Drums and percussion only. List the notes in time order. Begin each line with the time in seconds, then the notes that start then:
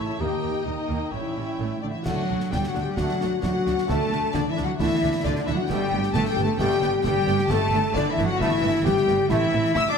2.06 concert bass drum, snare, crash
2.40 snare
2.52 concert bass drum, snare
2.64 snare
2.75 snare
2.97 concert bass drum, snare
3.09 snare
3.21 snare
3.43 concert bass drum, snare
3.67 snare
3.78 snare
3.89 concert bass drum, snare
4.12 snare
4.34 concert bass drum, snare
4.57 snare
4.80 concert bass drum, snare
5.25 concert bass drum, snare
5.36 snare
5.47 snare
5.70 concert bass drum, snare, crash
6.03 snare
6.14 concert bass drum, snare
6.25 snare
6.37 snare
6.59 concert bass drum, snare
6.70 snare
6.82 snare
7.04 concert bass drum, snare
7.27 snare
7.39 snare
7.50 concert bass drum, snare
7.74 snare
7.96 concert bass drum, snare
8.18 snare
8.41 concert bass drum, snare
8.86 concert bass drum, snare
8.97 snare
9.08 snare
9.31 concert bass drum, snare, crash
9.65 snare
9.75 concert bass drum, snare
9.87 snare